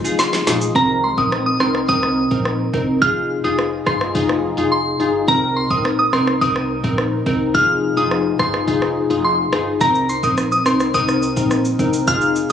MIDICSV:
0, 0, Header, 1, 6, 480
1, 0, Start_track
1, 0, Key_signature, -3, "minor"
1, 0, Tempo, 566038
1, 639, Time_signature, 4, 2, 24, 8
1, 10618, End_track
2, 0, Start_track
2, 0, Title_t, "Synth bell"
2, 0, Program_c, 0, 98
2, 162, Note_on_c, 0, 84, 80
2, 499, Note_off_c, 0, 84, 0
2, 642, Note_on_c, 0, 82, 108
2, 742, Note_off_c, 0, 82, 0
2, 881, Note_on_c, 0, 84, 74
2, 981, Note_off_c, 0, 84, 0
2, 999, Note_on_c, 0, 87, 68
2, 1101, Note_off_c, 0, 87, 0
2, 1240, Note_on_c, 0, 87, 75
2, 1341, Note_off_c, 0, 87, 0
2, 1359, Note_on_c, 0, 84, 81
2, 1460, Note_off_c, 0, 84, 0
2, 1600, Note_on_c, 0, 87, 99
2, 1938, Note_off_c, 0, 87, 0
2, 2559, Note_on_c, 0, 89, 106
2, 2660, Note_off_c, 0, 89, 0
2, 2919, Note_on_c, 0, 87, 72
2, 3020, Note_off_c, 0, 87, 0
2, 3279, Note_on_c, 0, 84, 88
2, 3380, Note_off_c, 0, 84, 0
2, 4000, Note_on_c, 0, 84, 77
2, 4338, Note_off_c, 0, 84, 0
2, 4480, Note_on_c, 0, 82, 109
2, 4581, Note_off_c, 0, 82, 0
2, 4719, Note_on_c, 0, 84, 80
2, 4820, Note_off_c, 0, 84, 0
2, 4839, Note_on_c, 0, 87, 71
2, 4940, Note_off_c, 0, 87, 0
2, 5078, Note_on_c, 0, 87, 72
2, 5180, Note_off_c, 0, 87, 0
2, 5199, Note_on_c, 0, 84, 80
2, 5300, Note_off_c, 0, 84, 0
2, 5438, Note_on_c, 0, 87, 98
2, 5777, Note_off_c, 0, 87, 0
2, 6399, Note_on_c, 0, 89, 101
2, 6500, Note_off_c, 0, 89, 0
2, 6760, Note_on_c, 0, 87, 76
2, 6861, Note_off_c, 0, 87, 0
2, 7119, Note_on_c, 0, 84, 85
2, 7220, Note_off_c, 0, 84, 0
2, 7840, Note_on_c, 0, 84, 76
2, 8178, Note_off_c, 0, 84, 0
2, 8319, Note_on_c, 0, 82, 111
2, 8420, Note_off_c, 0, 82, 0
2, 8560, Note_on_c, 0, 84, 79
2, 8661, Note_off_c, 0, 84, 0
2, 8681, Note_on_c, 0, 87, 69
2, 8781, Note_off_c, 0, 87, 0
2, 8921, Note_on_c, 0, 87, 75
2, 9021, Note_off_c, 0, 87, 0
2, 9041, Note_on_c, 0, 84, 81
2, 9141, Note_off_c, 0, 84, 0
2, 9280, Note_on_c, 0, 87, 99
2, 9618, Note_off_c, 0, 87, 0
2, 10241, Note_on_c, 0, 89, 105
2, 10341, Note_off_c, 0, 89, 0
2, 10618, End_track
3, 0, Start_track
3, 0, Title_t, "Synth pluck"
3, 0, Program_c, 1, 84
3, 37, Note_on_c, 1, 63, 78
3, 39, Note_on_c, 1, 65, 72
3, 42, Note_on_c, 1, 68, 84
3, 218, Note_off_c, 1, 63, 0
3, 219, Note_off_c, 1, 65, 0
3, 221, Note_off_c, 1, 68, 0
3, 395, Note_on_c, 1, 63, 77
3, 398, Note_on_c, 1, 65, 69
3, 401, Note_on_c, 1, 68, 81
3, 577, Note_off_c, 1, 63, 0
3, 579, Note_off_c, 1, 65, 0
3, 580, Note_off_c, 1, 68, 0
3, 636, Note_on_c, 1, 60, 95
3, 639, Note_on_c, 1, 63, 90
3, 642, Note_on_c, 1, 70, 104
3, 818, Note_off_c, 1, 60, 0
3, 819, Note_off_c, 1, 63, 0
3, 821, Note_off_c, 1, 70, 0
3, 996, Note_on_c, 1, 60, 80
3, 999, Note_on_c, 1, 63, 71
3, 1001, Note_on_c, 1, 70, 84
3, 1178, Note_off_c, 1, 60, 0
3, 1179, Note_off_c, 1, 63, 0
3, 1180, Note_off_c, 1, 70, 0
3, 1356, Note_on_c, 1, 60, 73
3, 1358, Note_on_c, 1, 63, 68
3, 1361, Note_on_c, 1, 70, 86
3, 1538, Note_off_c, 1, 60, 0
3, 1539, Note_off_c, 1, 63, 0
3, 1540, Note_off_c, 1, 70, 0
3, 1597, Note_on_c, 1, 60, 97
3, 1599, Note_on_c, 1, 63, 84
3, 1602, Note_on_c, 1, 70, 104
3, 1778, Note_off_c, 1, 60, 0
3, 1779, Note_off_c, 1, 63, 0
3, 1781, Note_off_c, 1, 70, 0
3, 1957, Note_on_c, 1, 60, 75
3, 1960, Note_on_c, 1, 63, 70
3, 1963, Note_on_c, 1, 70, 85
3, 2138, Note_off_c, 1, 60, 0
3, 2140, Note_off_c, 1, 63, 0
3, 2141, Note_off_c, 1, 70, 0
3, 2318, Note_on_c, 1, 60, 76
3, 2321, Note_on_c, 1, 63, 72
3, 2323, Note_on_c, 1, 70, 81
3, 2499, Note_off_c, 1, 60, 0
3, 2500, Note_off_c, 1, 63, 0
3, 2501, Note_off_c, 1, 70, 0
3, 2557, Note_on_c, 1, 63, 97
3, 2560, Note_on_c, 1, 65, 89
3, 2562, Note_on_c, 1, 68, 101
3, 2738, Note_off_c, 1, 63, 0
3, 2740, Note_off_c, 1, 65, 0
3, 2741, Note_off_c, 1, 68, 0
3, 2917, Note_on_c, 1, 63, 79
3, 2920, Note_on_c, 1, 65, 73
3, 2922, Note_on_c, 1, 68, 86
3, 3098, Note_off_c, 1, 63, 0
3, 3100, Note_off_c, 1, 65, 0
3, 3101, Note_off_c, 1, 68, 0
3, 3275, Note_on_c, 1, 63, 78
3, 3279, Note_on_c, 1, 65, 67
3, 3281, Note_on_c, 1, 68, 84
3, 3457, Note_off_c, 1, 63, 0
3, 3459, Note_off_c, 1, 65, 0
3, 3460, Note_off_c, 1, 68, 0
3, 3517, Note_on_c, 1, 63, 94
3, 3520, Note_on_c, 1, 65, 85
3, 3523, Note_on_c, 1, 68, 107
3, 3698, Note_off_c, 1, 63, 0
3, 3700, Note_off_c, 1, 65, 0
3, 3701, Note_off_c, 1, 68, 0
3, 3877, Note_on_c, 1, 63, 77
3, 3880, Note_on_c, 1, 65, 70
3, 3883, Note_on_c, 1, 68, 87
3, 4058, Note_off_c, 1, 63, 0
3, 4060, Note_off_c, 1, 65, 0
3, 4061, Note_off_c, 1, 68, 0
3, 4237, Note_on_c, 1, 63, 76
3, 4240, Note_on_c, 1, 65, 70
3, 4242, Note_on_c, 1, 68, 84
3, 4418, Note_off_c, 1, 63, 0
3, 4420, Note_off_c, 1, 65, 0
3, 4421, Note_off_c, 1, 68, 0
3, 4476, Note_on_c, 1, 60, 94
3, 4479, Note_on_c, 1, 63, 84
3, 4482, Note_on_c, 1, 70, 106
3, 4658, Note_off_c, 1, 60, 0
3, 4660, Note_off_c, 1, 63, 0
3, 4661, Note_off_c, 1, 70, 0
3, 4837, Note_on_c, 1, 60, 75
3, 4839, Note_on_c, 1, 63, 68
3, 4842, Note_on_c, 1, 70, 86
3, 5018, Note_off_c, 1, 60, 0
3, 5019, Note_off_c, 1, 63, 0
3, 5021, Note_off_c, 1, 70, 0
3, 5197, Note_on_c, 1, 60, 74
3, 5200, Note_on_c, 1, 63, 69
3, 5202, Note_on_c, 1, 70, 85
3, 5378, Note_off_c, 1, 60, 0
3, 5380, Note_off_c, 1, 63, 0
3, 5381, Note_off_c, 1, 70, 0
3, 5438, Note_on_c, 1, 60, 92
3, 5441, Note_on_c, 1, 63, 82
3, 5443, Note_on_c, 1, 70, 102
3, 5619, Note_off_c, 1, 60, 0
3, 5620, Note_off_c, 1, 63, 0
3, 5621, Note_off_c, 1, 70, 0
3, 5797, Note_on_c, 1, 60, 77
3, 5799, Note_on_c, 1, 63, 72
3, 5802, Note_on_c, 1, 70, 85
3, 5978, Note_off_c, 1, 60, 0
3, 5979, Note_off_c, 1, 63, 0
3, 5981, Note_off_c, 1, 70, 0
3, 6157, Note_on_c, 1, 60, 78
3, 6160, Note_on_c, 1, 63, 69
3, 6162, Note_on_c, 1, 70, 79
3, 6338, Note_off_c, 1, 60, 0
3, 6340, Note_off_c, 1, 63, 0
3, 6341, Note_off_c, 1, 70, 0
3, 6395, Note_on_c, 1, 63, 92
3, 6399, Note_on_c, 1, 65, 86
3, 6401, Note_on_c, 1, 68, 105
3, 6578, Note_off_c, 1, 63, 0
3, 6579, Note_off_c, 1, 65, 0
3, 6580, Note_off_c, 1, 68, 0
3, 6757, Note_on_c, 1, 63, 79
3, 6760, Note_on_c, 1, 65, 71
3, 6762, Note_on_c, 1, 68, 87
3, 6938, Note_off_c, 1, 63, 0
3, 6940, Note_off_c, 1, 65, 0
3, 6941, Note_off_c, 1, 68, 0
3, 7118, Note_on_c, 1, 63, 73
3, 7120, Note_on_c, 1, 65, 69
3, 7123, Note_on_c, 1, 68, 83
3, 7299, Note_off_c, 1, 63, 0
3, 7300, Note_off_c, 1, 65, 0
3, 7301, Note_off_c, 1, 68, 0
3, 7355, Note_on_c, 1, 63, 94
3, 7358, Note_on_c, 1, 65, 84
3, 7361, Note_on_c, 1, 68, 104
3, 7537, Note_off_c, 1, 63, 0
3, 7539, Note_off_c, 1, 65, 0
3, 7540, Note_off_c, 1, 68, 0
3, 7717, Note_on_c, 1, 63, 73
3, 7718, Note_on_c, 1, 65, 72
3, 7722, Note_on_c, 1, 68, 88
3, 7898, Note_off_c, 1, 63, 0
3, 7899, Note_off_c, 1, 65, 0
3, 7901, Note_off_c, 1, 68, 0
3, 8076, Note_on_c, 1, 63, 78
3, 8079, Note_on_c, 1, 65, 68
3, 8081, Note_on_c, 1, 68, 82
3, 8258, Note_off_c, 1, 63, 0
3, 8259, Note_off_c, 1, 65, 0
3, 8260, Note_off_c, 1, 68, 0
3, 8315, Note_on_c, 1, 60, 95
3, 8318, Note_on_c, 1, 63, 89
3, 8321, Note_on_c, 1, 70, 105
3, 8498, Note_off_c, 1, 60, 0
3, 8499, Note_off_c, 1, 63, 0
3, 8500, Note_off_c, 1, 70, 0
3, 8678, Note_on_c, 1, 60, 75
3, 8681, Note_on_c, 1, 63, 70
3, 8682, Note_on_c, 1, 70, 84
3, 8859, Note_off_c, 1, 60, 0
3, 8860, Note_off_c, 1, 63, 0
3, 8861, Note_off_c, 1, 70, 0
3, 9037, Note_on_c, 1, 60, 75
3, 9039, Note_on_c, 1, 63, 71
3, 9043, Note_on_c, 1, 70, 85
3, 9218, Note_off_c, 1, 60, 0
3, 9219, Note_off_c, 1, 63, 0
3, 9221, Note_off_c, 1, 70, 0
3, 9277, Note_on_c, 1, 60, 98
3, 9279, Note_on_c, 1, 63, 86
3, 9282, Note_on_c, 1, 70, 105
3, 9458, Note_off_c, 1, 60, 0
3, 9459, Note_off_c, 1, 63, 0
3, 9461, Note_off_c, 1, 70, 0
3, 9637, Note_on_c, 1, 60, 76
3, 9639, Note_on_c, 1, 63, 72
3, 9642, Note_on_c, 1, 70, 80
3, 9818, Note_off_c, 1, 60, 0
3, 9819, Note_off_c, 1, 63, 0
3, 9821, Note_off_c, 1, 70, 0
3, 9998, Note_on_c, 1, 60, 78
3, 10000, Note_on_c, 1, 63, 72
3, 10003, Note_on_c, 1, 70, 84
3, 10179, Note_off_c, 1, 60, 0
3, 10180, Note_off_c, 1, 63, 0
3, 10181, Note_off_c, 1, 70, 0
3, 10238, Note_on_c, 1, 63, 97
3, 10240, Note_on_c, 1, 65, 90
3, 10243, Note_on_c, 1, 68, 104
3, 10419, Note_off_c, 1, 63, 0
3, 10420, Note_off_c, 1, 65, 0
3, 10421, Note_off_c, 1, 68, 0
3, 10618, End_track
4, 0, Start_track
4, 0, Title_t, "Ambient pad"
4, 0, Program_c, 2, 92
4, 0, Note_on_c, 2, 48, 77
4, 0, Note_on_c, 2, 53, 74
4, 0, Note_on_c, 2, 56, 72
4, 0, Note_on_c, 2, 63, 90
4, 605, Note_off_c, 2, 48, 0
4, 621, Note_off_c, 2, 53, 0
4, 621, Note_off_c, 2, 56, 0
4, 621, Note_off_c, 2, 63, 0
4, 10618, End_track
5, 0, Start_track
5, 0, Title_t, "Upright bass"
5, 0, Program_c, 3, 32
5, 399, Note_on_c, 3, 34, 86
5, 618, Note_off_c, 3, 34, 0
5, 641, Note_on_c, 3, 36, 102
5, 968, Note_off_c, 3, 36, 0
5, 999, Note_on_c, 3, 34, 82
5, 1326, Note_off_c, 3, 34, 0
5, 1361, Note_on_c, 3, 36, 88
5, 1578, Note_off_c, 3, 36, 0
5, 1601, Note_on_c, 3, 36, 104
5, 1927, Note_off_c, 3, 36, 0
5, 1962, Note_on_c, 3, 34, 84
5, 2288, Note_off_c, 3, 34, 0
5, 2321, Note_on_c, 3, 36, 90
5, 2538, Note_off_c, 3, 36, 0
5, 2560, Note_on_c, 3, 29, 98
5, 2887, Note_off_c, 3, 29, 0
5, 2920, Note_on_c, 3, 29, 93
5, 3247, Note_off_c, 3, 29, 0
5, 3281, Note_on_c, 3, 31, 97
5, 3498, Note_off_c, 3, 31, 0
5, 3521, Note_on_c, 3, 29, 103
5, 3847, Note_off_c, 3, 29, 0
5, 3879, Note_on_c, 3, 29, 89
5, 4207, Note_off_c, 3, 29, 0
5, 4240, Note_on_c, 3, 31, 84
5, 4458, Note_off_c, 3, 31, 0
5, 4480, Note_on_c, 3, 36, 106
5, 4807, Note_off_c, 3, 36, 0
5, 4838, Note_on_c, 3, 34, 83
5, 5166, Note_off_c, 3, 34, 0
5, 5200, Note_on_c, 3, 36, 86
5, 5418, Note_off_c, 3, 36, 0
5, 5440, Note_on_c, 3, 36, 106
5, 5767, Note_off_c, 3, 36, 0
5, 5801, Note_on_c, 3, 34, 87
5, 6127, Note_off_c, 3, 34, 0
5, 6160, Note_on_c, 3, 36, 87
5, 6378, Note_off_c, 3, 36, 0
5, 6400, Note_on_c, 3, 29, 104
5, 6727, Note_off_c, 3, 29, 0
5, 6759, Note_on_c, 3, 29, 92
5, 7086, Note_off_c, 3, 29, 0
5, 7120, Note_on_c, 3, 31, 94
5, 7338, Note_off_c, 3, 31, 0
5, 7359, Note_on_c, 3, 29, 103
5, 7686, Note_off_c, 3, 29, 0
5, 7719, Note_on_c, 3, 29, 88
5, 8046, Note_off_c, 3, 29, 0
5, 8080, Note_on_c, 3, 31, 82
5, 8298, Note_off_c, 3, 31, 0
5, 8319, Note_on_c, 3, 36, 102
5, 8647, Note_off_c, 3, 36, 0
5, 8678, Note_on_c, 3, 34, 84
5, 9006, Note_off_c, 3, 34, 0
5, 9041, Note_on_c, 3, 36, 86
5, 9258, Note_off_c, 3, 36, 0
5, 9280, Note_on_c, 3, 36, 108
5, 9607, Note_off_c, 3, 36, 0
5, 9641, Note_on_c, 3, 34, 90
5, 9968, Note_off_c, 3, 34, 0
5, 10000, Note_on_c, 3, 36, 91
5, 10218, Note_off_c, 3, 36, 0
5, 10241, Note_on_c, 3, 29, 101
5, 10567, Note_off_c, 3, 29, 0
5, 10618, End_track
6, 0, Start_track
6, 0, Title_t, "Drums"
6, 42, Note_on_c, 9, 82, 72
6, 127, Note_off_c, 9, 82, 0
6, 160, Note_on_c, 9, 38, 58
6, 160, Note_on_c, 9, 82, 74
6, 245, Note_off_c, 9, 38, 0
6, 245, Note_off_c, 9, 82, 0
6, 280, Note_on_c, 9, 38, 64
6, 280, Note_on_c, 9, 82, 53
6, 365, Note_off_c, 9, 38, 0
6, 365, Note_off_c, 9, 82, 0
6, 400, Note_on_c, 9, 38, 93
6, 403, Note_on_c, 9, 42, 83
6, 403, Note_on_c, 9, 82, 57
6, 485, Note_off_c, 9, 38, 0
6, 487, Note_off_c, 9, 42, 0
6, 487, Note_off_c, 9, 82, 0
6, 520, Note_on_c, 9, 82, 74
6, 605, Note_off_c, 9, 82, 0
6, 641, Note_on_c, 9, 36, 121
6, 726, Note_off_c, 9, 36, 0
6, 999, Note_on_c, 9, 36, 90
6, 1084, Note_off_c, 9, 36, 0
6, 1122, Note_on_c, 9, 37, 98
6, 1206, Note_off_c, 9, 37, 0
6, 1359, Note_on_c, 9, 37, 89
6, 1444, Note_off_c, 9, 37, 0
6, 1481, Note_on_c, 9, 37, 92
6, 1566, Note_off_c, 9, 37, 0
6, 1601, Note_on_c, 9, 36, 89
6, 1686, Note_off_c, 9, 36, 0
6, 1722, Note_on_c, 9, 37, 90
6, 1806, Note_off_c, 9, 37, 0
6, 1962, Note_on_c, 9, 36, 95
6, 2046, Note_off_c, 9, 36, 0
6, 2081, Note_on_c, 9, 37, 86
6, 2165, Note_off_c, 9, 37, 0
6, 2321, Note_on_c, 9, 36, 87
6, 2406, Note_off_c, 9, 36, 0
6, 2561, Note_on_c, 9, 36, 121
6, 2646, Note_off_c, 9, 36, 0
6, 3041, Note_on_c, 9, 37, 95
6, 3125, Note_off_c, 9, 37, 0
6, 3278, Note_on_c, 9, 37, 93
6, 3281, Note_on_c, 9, 36, 88
6, 3362, Note_off_c, 9, 37, 0
6, 3366, Note_off_c, 9, 36, 0
6, 3401, Note_on_c, 9, 37, 95
6, 3486, Note_off_c, 9, 37, 0
6, 3520, Note_on_c, 9, 36, 91
6, 3605, Note_off_c, 9, 36, 0
6, 3641, Note_on_c, 9, 37, 91
6, 3726, Note_off_c, 9, 37, 0
6, 4480, Note_on_c, 9, 36, 122
6, 4565, Note_off_c, 9, 36, 0
6, 4838, Note_on_c, 9, 36, 96
6, 4923, Note_off_c, 9, 36, 0
6, 4961, Note_on_c, 9, 37, 99
6, 5046, Note_off_c, 9, 37, 0
6, 5198, Note_on_c, 9, 37, 92
6, 5283, Note_off_c, 9, 37, 0
6, 5321, Note_on_c, 9, 37, 91
6, 5405, Note_off_c, 9, 37, 0
6, 5440, Note_on_c, 9, 36, 89
6, 5525, Note_off_c, 9, 36, 0
6, 5561, Note_on_c, 9, 37, 92
6, 5645, Note_off_c, 9, 37, 0
6, 5801, Note_on_c, 9, 36, 96
6, 5886, Note_off_c, 9, 36, 0
6, 5920, Note_on_c, 9, 37, 91
6, 6005, Note_off_c, 9, 37, 0
6, 6160, Note_on_c, 9, 36, 92
6, 6245, Note_off_c, 9, 36, 0
6, 6400, Note_on_c, 9, 36, 118
6, 6485, Note_off_c, 9, 36, 0
6, 6880, Note_on_c, 9, 37, 94
6, 6965, Note_off_c, 9, 37, 0
6, 7118, Note_on_c, 9, 37, 91
6, 7120, Note_on_c, 9, 36, 90
6, 7203, Note_off_c, 9, 37, 0
6, 7205, Note_off_c, 9, 36, 0
6, 7241, Note_on_c, 9, 37, 93
6, 7325, Note_off_c, 9, 37, 0
6, 7359, Note_on_c, 9, 36, 91
6, 7444, Note_off_c, 9, 36, 0
6, 7480, Note_on_c, 9, 37, 88
6, 7564, Note_off_c, 9, 37, 0
6, 8078, Note_on_c, 9, 37, 97
6, 8163, Note_off_c, 9, 37, 0
6, 8319, Note_on_c, 9, 82, 76
6, 8320, Note_on_c, 9, 36, 117
6, 8403, Note_off_c, 9, 82, 0
6, 8405, Note_off_c, 9, 36, 0
6, 8437, Note_on_c, 9, 82, 51
6, 8521, Note_off_c, 9, 82, 0
6, 8558, Note_on_c, 9, 82, 62
6, 8643, Note_off_c, 9, 82, 0
6, 8677, Note_on_c, 9, 82, 72
6, 8678, Note_on_c, 9, 36, 94
6, 8762, Note_off_c, 9, 36, 0
6, 8762, Note_off_c, 9, 82, 0
6, 8799, Note_on_c, 9, 37, 98
6, 8799, Note_on_c, 9, 82, 70
6, 8883, Note_off_c, 9, 82, 0
6, 8884, Note_off_c, 9, 37, 0
6, 8919, Note_on_c, 9, 82, 55
6, 9004, Note_off_c, 9, 82, 0
6, 9038, Note_on_c, 9, 37, 89
6, 9039, Note_on_c, 9, 82, 55
6, 9123, Note_off_c, 9, 37, 0
6, 9124, Note_off_c, 9, 82, 0
6, 9159, Note_on_c, 9, 82, 70
6, 9161, Note_on_c, 9, 37, 90
6, 9244, Note_off_c, 9, 82, 0
6, 9246, Note_off_c, 9, 37, 0
6, 9279, Note_on_c, 9, 82, 89
6, 9280, Note_on_c, 9, 36, 88
6, 9363, Note_off_c, 9, 82, 0
6, 9365, Note_off_c, 9, 36, 0
6, 9401, Note_on_c, 9, 37, 90
6, 9401, Note_on_c, 9, 82, 58
6, 9485, Note_off_c, 9, 37, 0
6, 9486, Note_off_c, 9, 82, 0
6, 9518, Note_on_c, 9, 82, 58
6, 9603, Note_off_c, 9, 82, 0
6, 9641, Note_on_c, 9, 36, 97
6, 9641, Note_on_c, 9, 82, 69
6, 9725, Note_off_c, 9, 82, 0
6, 9726, Note_off_c, 9, 36, 0
6, 9759, Note_on_c, 9, 37, 86
6, 9759, Note_on_c, 9, 82, 68
6, 9844, Note_off_c, 9, 37, 0
6, 9844, Note_off_c, 9, 82, 0
6, 9878, Note_on_c, 9, 82, 54
6, 9963, Note_off_c, 9, 82, 0
6, 10000, Note_on_c, 9, 36, 92
6, 10002, Note_on_c, 9, 82, 59
6, 10085, Note_off_c, 9, 36, 0
6, 10087, Note_off_c, 9, 82, 0
6, 10119, Note_on_c, 9, 82, 72
6, 10204, Note_off_c, 9, 82, 0
6, 10240, Note_on_c, 9, 36, 122
6, 10240, Note_on_c, 9, 82, 72
6, 10324, Note_off_c, 9, 82, 0
6, 10325, Note_off_c, 9, 36, 0
6, 10357, Note_on_c, 9, 82, 50
6, 10442, Note_off_c, 9, 82, 0
6, 10479, Note_on_c, 9, 82, 64
6, 10564, Note_off_c, 9, 82, 0
6, 10618, End_track
0, 0, End_of_file